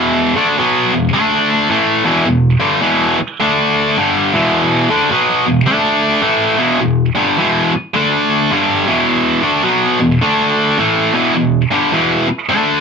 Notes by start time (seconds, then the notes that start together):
Already playing: E2 B2 E3
0.36 D3 A3 D4
0.58 B2 F#3 B3
0.93 E2 B2
1.13 D3 A3 D4
1.69 A2 E3 A3
2.04 E2 B2 E3
2.26 E2 B2
2.60 G2 D3 G3
2.81 E2 B2 E3
3.19 muted distorted electric guitar stroke
3.40 D3 A3 D4
3.97 G2 D3 G3
4.34 E2 B2 E3
4.90 D3 A3 D4
5.10 B2 F#3 B3
5.46 E2 B2
5.66 D3 A3 D4
6.22 A2 E3 A3
6.57 E2 B2 E3
6.80 E2 B2
7.15 G2 D3 G3
7.38 E2 B2 E3
7.73 muted distorted electric guitar stroke
7.94 D3 A3 D4
8.51 G2 D3 G3
8.87 E2 B2 E3
9.43 D3 A3 D4
9.63 B2 F#3 B3
10.00 E2 B2
10.21 D3 A3 D4
10.79 A2 E3 A3
11.13 E2 B2 E3
11.35 E2 B2
11.71 G2 D3 G3
11.92 E2 B2 E3
12.28 muted distorted electric guitar stroke
12.49 D3 A3 D4